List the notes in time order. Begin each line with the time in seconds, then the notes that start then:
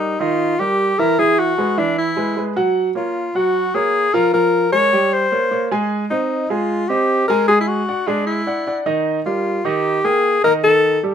Already playing: G3 D#4 G4 A#4
0.20 D#3 D#4 F4 D#5
0.59 G3 G4 A#4
0.99 E3 E4 A#4 E5
1.19 E3 E4 G#4 E5
1.39 F#4
1.58 G#3 G#4 B4
1.78 E3 D4 E4 E5
1.98 E4
2.17 G#3 G#4 B4
2.36 G#3 G#4 B4
2.56 F#3 F#4 F#5
2.95 A#3 F4 A#4 C#5
3.35 F#3 F#4 F#5
3.74 A#3 G#4 A#4 C#5
4.13 F3 F4 A#4 F5
4.33 F3 F4 A#4 F5
4.72 G#3 G#4 A#4 C#5
4.92 G3 G4 G5
5.12 C5
5.32 A#3 A#4 C#5
5.51 A#3 A#4 C#5
5.71 G#3 G#4 G#5
6.10 C4 D#4 C5 D#5
6.50 G#3 F4 G#4 G#5
6.88 C4 G4 C5 D#5
7.28 G#3 G#4 A#4 G#5
7.48 G#3 G#4 G#5
7.61 E4
7.67 F#4
7.88 D4 D5 F#5
8.07 G#3 D4 G#4 G#5
8.26 E4
8.47 D4 D5 F#5
8.67 D4 D5 F#5
8.86 D#3 D#4 D#5
9.26 G3 F4 G4 A#4
9.65 D#3 D#4 G4 D#5
10.04 A#3 G#4 A#4 G5
10.44 D#3 D#4 A#4 D#5
10.63 D#3 D#4 A4 D#5
11.03 G3 G4 A4